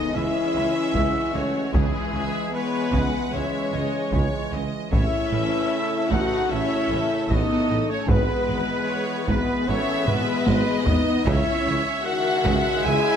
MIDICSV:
0, 0, Header, 1, 12, 480
1, 0, Start_track
1, 0, Key_signature, 4, "minor"
1, 0, Tempo, 793651
1, 1059, Time_signature, 4, 2, 24, 8
1, 7962, End_track
2, 0, Start_track
2, 0, Title_t, "Trumpet section"
2, 0, Program_c, 0, 61
2, 0, Note_on_c, 0, 75, 72
2, 97, Note_off_c, 0, 75, 0
2, 97, Note_on_c, 0, 76, 79
2, 805, Note_off_c, 0, 76, 0
2, 811, Note_on_c, 0, 73, 68
2, 1051, Note_on_c, 0, 68, 70
2, 1055, Note_off_c, 0, 73, 0
2, 1527, Note_off_c, 0, 68, 0
2, 1535, Note_on_c, 0, 71, 81
2, 2017, Note_on_c, 0, 73, 57
2, 2018, Note_off_c, 0, 71, 0
2, 2727, Note_off_c, 0, 73, 0
2, 2975, Note_on_c, 0, 76, 83
2, 3675, Note_off_c, 0, 76, 0
2, 3698, Note_on_c, 0, 78, 84
2, 3936, Note_off_c, 0, 78, 0
2, 3939, Note_on_c, 0, 76, 70
2, 4410, Note_on_c, 0, 75, 79
2, 4418, Note_off_c, 0, 76, 0
2, 4771, Note_off_c, 0, 75, 0
2, 4771, Note_on_c, 0, 73, 76
2, 4891, Note_on_c, 0, 71, 80
2, 4892, Note_off_c, 0, 73, 0
2, 5606, Note_off_c, 0, 71, 0
2, 5613, Note_on_c, 0, 71, 89
2, 5849, Note_off_c, 0, 71, 0
2, 5853, Note_on_c, 0, 73, 77
2, 6091, Note_on_c, 0, 71, 85
2, 6093, Note_off_c, 0, 73, 0
2, 6568, Note_on_c, 0, 75, 93
2, 6570, Note_off_c, 0, 71, 0
2, 6810, Note_off_c, 0, 75, 0
2, 6814, Note_on_c, 0, 76, 84
2, 7284, Note_off_c, 0, 76, 0
2, 7289, Note_on_c, 0, 78, 99
2, 7766, Note_on_c, 0, 80, 105
2, 7770, Note_off_c, 0, 78, 0
2, 7962, Note_off_c, 0, 80, 0
2, 7962, End_track
3, 0, Start_track
3, 0, Title_t, "Violin section"
3, 0, Program_c, 1, 48
3, 0, Note_on_c, 1, 75, 76
3, 90, Note_on_c, 1, 76, 83
3, 94, Note_off_c, 1, 75, 0
3, 812, Note_on_c, 1, 73, 63
3, 816, Note_off_c, 1, 76, 0
3, 1056, Note_off_c, 1, 73, 0
3, 1069, Note_on_c, 1, 68, 68
3, 1539, Note_on_c, 1, 71, 76
3, 1546, Note_off_c, 1, 68, 0
3, 2011, Note_off_c, 1, 71, 0
3, 2018, Note_on_c, 1, 73, 69
3, 2742, Note_off_c, 1, 73, 0
3, 2978, Note_on_c, 1, 76, 81
3, 3676, Note_off_c, 1, 76, 0
3, 3684, Note_on_c, 1, 78, 80
3, 3934, Note_off_c, 1, 78, 0
3, 3948, Note_on_c, 1, 76, 79
3, 4422, Note_off_c, 1, 76, 0
3, 4426, Note_on_c, 1, 75, 72
3, 4779, Note_off_c, 1, 75, 0
3, 4780, Note_on_c, 1, 73, 71
3, 4895, Note_off_c, 1, 73, 0
3, 4911, Note_on_c, 1, 71, 84
3, 5607, Note_off_c, 1, 71, 0
3, 5616, Note_on_c, 1, 71, 77
3, 5850, Note_off_c, 1, 71, 0
3, 5864, Note_on_c, 1, 73, 83
3, 6097, Note_on_c, 1, 71, 85
3, 6098, Note_off_c, 1, 73, 0
3, 6564, Note_off_c, 1, 71, 0
3, 6564, Note_on_c, 1, 75, 78
3, 6804, Note_on_c, 1, 76, 88
3, 6808, Note_off_c, 1, 75, 0
3, 7284, Note_on_c, 1, 78, 98
3, 7288, Note_off_c, 1, 76, 0
3, 7767, Note_on_c, 1, 80, 118
3, 7768, Note_off_c, 1, 78, 0
3, 7962, Note_off_c, 1, 80, 0
3, 7962, End_track
4, 0, Start_track
4, 0, Title_t, "Violin section"
4, 0, Program_c, 2, 48
4, 0, Note_on_c, 2, 69, 58
4, 78, Note_on_c, 2, 68, 61
4, 88, Note_off_c, 2, 69, 0
4, 569, Note_off_c, 2, 68, 0
4, 573, Note_on_c, 2, 66, 66
4, 1057, Note_off_c, 2, 66, 0
4, 1061, Note_on_c, 2, 64, 57
4, 1296, Note_on_c, 2, 76, 62
4, 1301, Note_off_c, 2, 64, 0
4, 1534, Note_off_c, 2, 76, 0
4, 1538, Note_on_c, 2, 73, 70
4, 1775, Note_off_c, 2, 73, 0
4, 1787, Note_on_c, 2, 78, 68
4, 2024, Note_off_c, 2, 78, 0
4, 2033, Note_on_c, 2, 76, 66
4, 2257, Note_on_c, 2, 75, 63
4, 2267, Note_off_c, 2, 76, 0
4, 2496, Note_on_c, 2, 73, 68
4, 2500, Note_off_c, 2, 75, 0
4, 2735, Note_off_c, 2, 73, 0
4, 2745, Note_on_c, 2, 75, 66
4, 2981, Note_on_c, 2, 73, 70
4, 2984, Note_off_c, 2, 75, 0
4, 3217, Note_off_c, 2, 73, 0
4, 3224, Note_on_c, 2, 71, 61
4, 3463, Note_off_c, 2, 71, 0
4, 3472, Note_on_c, 2, 69, 69
4, 3707, Note_off_c, 2, 69, 0
4, 3719, Note_on_c, 2, 71, 61
4, 3951, Note_off_c, 2, 71, 0
4, 3951, Note_on_c, 2, 73, 74
4, 4181, Note_off_c, 2, 73, 0
4, 4194, Note_on_c, 2, 69, 74
4, 4895, Note_on_c, 2, 71, 75
4, 4901, Note_off_c, 2, 69, 0
4, 5363, Note_on_c, 2, 73, 78
4, 5364, Note_off_c, 2, 71, 0
4, 5607, Note_on_c, 2, 71, 74
4, 5608, Note_off_c, 2, 73, 0
4, 5850, Note_off_c, 2, 71, 0
4, 5852, Note_on_c, 2, 76, 98
4, 6321, Note_on_c, 2, 75, 91
4, 6322, Note_off_c, 2, 76, 0
4, 6806, Note_off_c, 2, 75, 0
4, 6810, Note_on_c, 2, 73, 86
4, 7288, Note_on_c, 2, 76, 106
4, 7291, Note_off_c, 2, 73, 0
4, 7962, Note_off_c, 2, 76, 0
4, 7962, End_track
5, 0, Start_track
5, 0, Title_t, "French horn section"
5, 0, Program_c, 3, 60
5, 0, Note_on_c, 3, 63, 92
5, 77, Note_on_c, 3, 64, 95
5, 94, Note_off_c, 3, 63, 0
5, 802, Note_on_c, 3, 61, 79
5, 810, Note_off_c, 3, 64, 0
5, 1043, Note_on_c, 3, 56, 78
5, 1051, Note_off_c, 3, 61, 0
5, 1515, Note_on_c, 3, 59, 91
5, 1523, Note_off_c, 3, 56, 0
5, 1999, Note_off_c, 3, 59, 0
5, 2016, Note_on_c, 3, 61, 69
5, 2741, Note_off_c, 3, 61, 0
5, 2979, Note_on_c, 3, 64, 103
5, 3676, Note_off_c, 3, 64, 0
5, 3693, Note_on_c, 3, 66, 105
5, 3938, Note_off_c, 3, 66, 0
5, 3955, Note_on_c, 3, 64, 93
5, 4426, Note_off_c, 3, 64, 0
5, 4437, Note_on_c, 3, 63, 87
5, 4783, Note_on_c, 3, 61, 89
5, 4785, Note_off_c, 3, 63, 0
5, 4899, Note_off_c, 3, 61, 0
5, 4904, Note_on_c, 3, 59, 95
5, 5605, Note_off_c, 3, 59, 0
5, 5612, Note_on_c, 3, 59, 96
5, 5848, Note_off_c, 3, 59, 0
5, 5853, Note_on_c, 3, 61, 84
5, 6090, Note_on_c, 3, 59, 91
5, 6093, Note_off_c, 3, 61, 0
5, 6570, Note_off_c, 3, 59, 0
5, 6572, Note_on_c, 3, 63, 102
5, 6811, Note_on_c, 3, 64, 92
5, 6812, Note_off_c, 3, 63, 0
5, 7175, Note_off_c, 3, 64, 0
5, 7278, Note_on_c, 3, 66, 108
5, 7755, Note_off_c, 3, 66, 0
5, 7768, Note_on_c, 3, 68, 127
5, 7962, Note_off_c, 3, 68, 0
5, 7962, End_track
6, 0, Start_track
6, 0, Title_t, "Viola section"
6, 0, Program_c, 4, 48
6, 0, Note_on_c, 4, 59, 75
6, 97, Note_off_c, 4, 59, 0
6, 100, Note_on_c, 4, 61, 73
6, 815, Note_on_c, 4, 57, 62
6, 821, Note_off_c, 4, 61, 0
6, 1056, Note_on_c, 4, 52, 72
6, 1057, Note_off_c, 4, 57, 0
6, 1528, Note_on_c, 4, 56, 74
6, 1530, Note_off_c, 4, 52, 0
6, 2005, Note_off_c, 4, 56, 0
6, 2016, Note_on_c, 4, 56, 59
6, 2726, Note_off_c, 4, 56, 0
6, 2977, Note_on_c, 4, 61, 79
6, 3675, Note_off_c, 4, 61, 0
6, 3694, Note_on_c, 4, 63, 75
6, 3938, Note_on_c, 4, 61, 87
6, 3939, Note_off_c, 4, 63, 0
6, 4414, Note_on_c, 4, 59, 85
6, 4417, Note_off_c, 4, 61, 0
6, 4765, Note_on_c, 4, 57, 70
6, 4766, Note_off_c, 4, 59, 0
6, 4883, Note_on_c, 4, 56, 82
6, 4887, Note_off_c, 4, 57, 0
6, 5605, Note_off_c, 4, 56, 0
6, 5612, Note_on_c, 4, 56, 71
6, 5840, Note_on_c, 4, 69, 81
6, 5848, Note_off_c, 4, 56, 0
6, 6080, Note_on_c, 4, 56, 89
6, 6086, Note_off_c, 4, 69, 0
6, 6565, Note_off_c, 4, 56, 0
6, 6575, Note_on_c, 4, 59, 90
6, 6814, Note_off_c, 4, 59, 0
6, 6817, Note_on_c, 4, 61, 82
6, 7285, Note_off_c, 4, 61, 0
6, 7294, Note_on_c, 4, 51, 95
6, 7763, Note_off_c, 4, 51, 0
6, 7775, Note_on_c, 4, 64, 117
6, 7962, Note_off_c, 4, 64, 0
6, 7962, End_track
7, 0, Start_track
7, 0, Title_t, "Trombone section"
7, 0, Program_c, 5, 61
7, 0, Note_on_c, 5, 52, 65
7, 0, Note_on_c, 5, 56, 64
7, 1042, Note_off_c, 5, 52, 0
7, 1042, Note_off_c, 5, 56, 0
7, 1056, Note_on_c, 5, 52, 67
7, 1057, Note_on_c, 5, 56, 66
7, 2957, Note_off_c, 5, 52, 0
7, 2958, Note_off_c, 5, 56, 0
7, 2974, Note_on_c, 5, 57, 72
7, 2978, Note_on_c, 5, 49, 76
7, 4779, Note_off_c, 5, 49, 0
7, 4779, Note_off_c, 5, 57, 0
7, 4882, Note_on_c, 5, 52, 75
7, 4884, Note_on_c, 5, 59, 79
7, 6781, Note_off_c, 5, 52, 0
7, 6806, Note_off_c, 5, 59, 0
7, 6815, Note_on_c, 5, 56, 97
7, 6816, Note_on_c, 5, 49, 104
7, 7962, Note_off_c, 5, 49, 0
7, 7962, Note_off_c, 5, 56, 0
7, 7962, End_track
8, 0, Start_track
8, 0, Title_t, "Cello section"
8, 0, Program_c, 6, 48
8, 94, Note_on_c, 6, 49, 38
8, 142, Note_off_c, 6, 49, 0
8, 330, Note_on_c, 6, 49, 52
8, 378, Note_off_c, 6, 49, 0
8, 575, Note_on_c, 6, 49, 58
8, 624, Note_off_c, 6, 49, 0
8, 810, Note_on_c, 6, 49, 54
8, 859, Note_off_c, 6, 49, 0
8, 1049, Note_on_c, 6, 49, 72
8, 1098, Note_off_c, 6, 49, 0
8, 1286, Note_on_c, 6, 49, 58
8, 1335, Note_off_c, 6, 49, 0
8, 1766, Note_on_c, 6, 49, 81
8, 1814, Note_off_c, 6, 49, 0
8, 2009, Note_on_c, 6, 49, 44
8, 2058, Note_off_c, 6, 49, 0
8, 2250, Note_on_c, 6, 49, 53
8, 2298, Note_off_c, 6, 49, 0
8, 2492, Note_on_c, 6, 49, 69
8, 2540, Note_off_c, 6, 49, 0
8, 2736, Note_on_c, 6, 49, 57
8, 2784, Note_off_c, 6, 49, 0
8, 2974, Note_on_c, 6, 45, 68
8, 3022, Note_off_c, 6, 45, 0
8, 3215, Note_on_c, 6, 45, 54
8, 3264, Note_off_c, 6, 45, 0
8, 3695, Note_on_c, 6, 45, 75
8, 3743, Note_off_c, 6, 45, 0
8, 3936, Note_on_c, 6, 45, 42
8, 3985, Note_off_c, 6, 45, 0
8, 4178, Note_on_c, 6, 45, 52
8, 4226, Note_off_c, 6, 45, 0
8, 4418, Note_on_c, 6, 45, 80
8, 4466, Note_off_c, 6, 45, 0
8, 4652, Note_on_c, 6, 45, 60
8, 4701, Note_off_c, 6, 45, 0
8, 4892, Note_on_c, 6, 44, 77
8, 4940, Note_off_c, 6, 44, 0
8, 5133, Note_on_c, 6, 44, 61
8, 5181, Note_off_c, 6, 44, 0
8, 5612, Note_on_c, 6, 44, 90
8, 5661, Note_off_c, 6, 44, 0
8, 5855, Note_on_c, 6, 44, 53
8, 5904, Note_off_c, 6, 44, 0
8, 6097, Note_on_c, 6, 44, 60
8, 6146, Note_off_c, 6, 44, 0
8, 6332, Note_on_c, 6, 44, 84
8, 6380, Note_off_c, 6, 44, 0
8, 6575, Note_on_c, 6, 44, 70
8, 6624, Note_off_c, 6, 44, 0
8, 6815, Note_on_c, 6, 49, 99
8, 6863, Note_off_c, 6, 49, 0
8, 7054, Note_on_c, 6, 49, 70
8, 7102, Note_off_c, 6, 49, 0
8, 7531, Note_on_c, 6, 49, 101
8, 7580, Note_off_c, 6, 49, 0
8, 7772, Note_on_c, 6, 49, 61
8, 7820, Note_off_c, 6, 49, 0
8, 7962, End_track
9, 0, Start_track
9, 0, Title_t, "Double bass section"
9, 0, Program_c, 7, 48
9, 94, Note_on_c, 7, 37, 48
9, 142, Note_off_c, 7, 37, 0
9, 337, Note_on_c, 7, 37, 51
9, 385, Note_off_c, 7, 37, 0
9, 573, Note_on_c, 7, 37, 70
9, 621, Note_off_c, 7, 37, 0
9, 817, Note_on_c, 7, 37, 50
9, 865, Note_off_c, 7, 37, 0
9, 1056, Note_on_c, 7, 37, 72
9, 1104, Note_off_c, 7, 37, 0
9, 1301, Note_on_c, 7, 37, 45
9, 1349, Note_off_c, 7, 37, 0
9, 1776, Note_on_c, 7, 37, 64
9, 1825, Note_off_c, 7, 37, 0
9, 2021, Note_on_c, 7, 37, 55
9, 2070, Note_off_c, 7, 37, 0
9, 2257, Note_on_c, 7, 37, 55
9, 2305, Note_off_c, 7, 37, 0
9, 2494, Note_on_c, 7, 37, 76
9, 2542, Note_off_c, 7, 37, 0
9, 2736, Note_on_c, 7, 37, 52
9, 2785, Note_off_c, 7, 37, 0
9, 2975, Note_on_c, 7, 33, 76
9, 3023, Note_off_c, 7, 33, 0
9, 3213, Note_on_c, 7, 33, 53
9, 3262, Note_off_c, 7, 33, 0
9, 3699, Note_on_c, 7, 33, 75
9, 3747, Note_off_c, 7, 33, 0
9, 3932, Note_on_c, 7, 33, 55
9, 3980, Note_off_c, 7, 33, 0
9, 4173, Note_on_c, 7, 33, 58
9, 4222, Note_off_c, 7, 33, 0
9, 4412, Note_on_c, 7, 33, 78
9, 4461, Note_off_c, 7, 33, 0
9, 4651, Note_on_c, 7, 33, 61
9, 4700, Note_off_c, 7, 33, 0
9, 4890, Note_on_c, 7, 32, 87
9, 4938, Note_off_c, 7, 32, 0
9, 5135, Note_on_c, 7, 32, 60
9, 5183, Note_off_c, 7, 32, 0
9, 5617, Note_on_c, 7, 32, 84
9, 5665, Note_off_c, 7, 32, 0
9, 5853, Note_on_c, 7, 32, 64
9, 5902, Note_off_c, 7, 32, 0
9, 6092, Note_on_c, 7, 32, 60
9, 6141, Note_off_c, 7, 32, 0
9, 6333, Note_on_c, 7, 32, 86
9, 6381, Note_off_c, 7, 32, 0
9, 6570, Note_on_c, 7, 32, 72
9, 6619, Note_off_c, 7, 32, 0
9, 6810, Note_on_c, 7, 37, 92
9, 6858, Note_off_c, 7, 37, 0
9, 7056, Note_on_c, 7, 37, 61
9, 7104, Note_off_c, 7, 37, 0
9, 7529, Note_on_c, 7, 37, 97
9, 7578, Note_off_c, 7, 37, 0
9, 7772, Note_on_c, 7, 37, 75
9, 7820, Note_off_c, 7, 37, 0
9, 7962, End_track
10, 0, Start_track
10, 0, Title_t, "Tuba"
10, 0, Program_c, 8, 58
10, 97, Note_on_c, 8, 37, 57
10, 193, Note_off_c, 8, 37, 0
10, 340, Note_on_c, 8, 37, 53
10, 436, Note_off_c, 8, 37, 0
10, 576, Note_on_c, 8, 37, 76
10, 673, Note_off_c, 8, 37, 0
10, 823, Note_on_c, 8, 37, 43
10, 918, Note_off_c, 8, 37, 0
10, 1056, Note_on_c, 8, 37, 74
10, 1153, Note_off_c, 8, 37, 0
10, 1302, Note_on_c, 8, 37, 54
10, 1398, Note_off_c, 8, 37, 0
10, 1778, Note_on_c, 8, 37, 79
10, 1874, Note_off_c, 8, 37, 0
10, 2015, Note_on_c, 8, 37, 53
10, 2112, Note_off_c, 8, 37, 0
10, 2255, Note_on_c, 8, 37, 52
10, 2352, Note_off_c, 8, 37, 0
10, 2495, Note_on_c, 8, 37, 75
10, 2593, Note_off_c, 8, 37, 0
10, 2741, Note_on_c, 8, 37, 47
10, 2838, Note_off_c, 8, 37, 0
10, 2980, Note_on_c, 8, 33, 81
10, 3076, Note_off_c, 8, 33, 0
10, 3214, Note_on_c, 8, 33, 54
10, 3312, Note_off_c, 8, 33, 0
10, 3702, Note_on_c, 8, 33, 79
10, 3798, Note_off_c, 8, 33, 0
10, 3942, Note_on_c, 8, 33, 57
10, 4038, Note_off_c, 8, 33, 0
10, 4172, Note_on_c, 8, 33, 52
10, 4269, Note_off_c, 8, 33, 0
10, 4412, Note_on_c, 8, 33, 78
10, 4508, Note_off_c, 8, 33, 0
10, 4655, Note_on_c, 8, 33, 52
10, 4750, Note_off_c, 8, 33, 0
10, 4885, Note_on_c, 8, 32, 89
10, 4983, Note_off_c, 8, 32, 0
10, 5128, Note_on_c, 8, 32, 62
10, 5225, Note_off_c, 8, 32, 0
10, 5609, Note_on_c, 8, 32, 78
10, 5706, Note_off_c, 8, 32, 0
10, 5852, Note_on_c, 8, 32, 62
10, 5948, Note_off_c, 8, 32, 0
10, 6096, Note_on_c, 8, 32, 65
10, 6191, Note_off_c, 8, 32, 0
10, 6332, Note_on_c, 8, 32, 93
10, 6428, Note_off_c, 8, 32, 0
10, 6567, Note_on_c, 8, 32, 59
10, 6664, Note_off_c, 8, 32, 0
10, 6813, Note_on_c, 8, 37, 102
10, 6909, Note_off_c, 8, 37, 0
10, 7054, Note_on_c, 8, 37, 69
10, 7150, Note_off_c, 8, 37, 0
10, 7532, Note_on_c, 8, 37, 104
10, 7628, Note_off_c, 8, 37, 0
10, 7770, Note_on_c, 8, 37, 74
10, 7866, Note_off_c, 8, 37, 0
10, 7962, End_track
11, 0, Start_track
11, 0, Title_t, "Sub drop"
11, 0, Program_c, 10, 103
11, 0, Note_on_c, 10, 60, 68
11, 1059, Note_off_c, 10, 60, 0
11, 7962, End_track
12, 0, Start_track
12, 0, Title_t, "Taiko and cinematic ensemble drums"
12, 573, Note_on_c, 9, 41, 79
12, 633, Note_off_c, 9, 41, 0
12, 1055, Note_on_c, 9, 41, 104
12, 1115, Note_off_c, 9, 41, 0
12, 1774, Note_on_c, 9, 41, 73
12, 1835, Note_off_c, 9, 41, 0
12, 2496, Note_on_c, 9, 41, 83
12, 2556, Note_off_c, 9, 41, 0
12, 2979, Note_on_c, 9, 41, 100
12, 3040, Note_off_c, 9, 41, 0
12, 3698, Note_on_c, 9, 41, 76
12, 3759, Note_off_c, 9, 41, 0
12, 4420, Note_on_c, 9, 41, 83
12, 4480, Note_off_c, 9, 41, 0
12, 4889, Note_on_c, 9, 41, 113
12, 4950, Note_off_c, 9, 41, 0
12, 5613, Note_on_c, 9, 41, 78
12, 5674, Note_off_c, 9, 41, 0
12, 6094, Note_on_c, 9, 45, 85
12, 6155, Note_off_c, 9, 45, 0
12, 6329, Note_on_c, 9, 48, 92
12, 6390, Note_off_c, 9, 48, 0
12, 6571, Note_on_c, 9, 43, 101
12, 6632, Note_off_c, 9, 43, 0
12, 6816, Note_on_c, 9, 41, 115
12, 6876, Note_off_c, 9, 41, 0
12, 7535, Note_on_c, 9, 41, 89
12, 7596, Note_off_c, 9, 41, 0
12, 7962, End_track
0, 0, End_of_file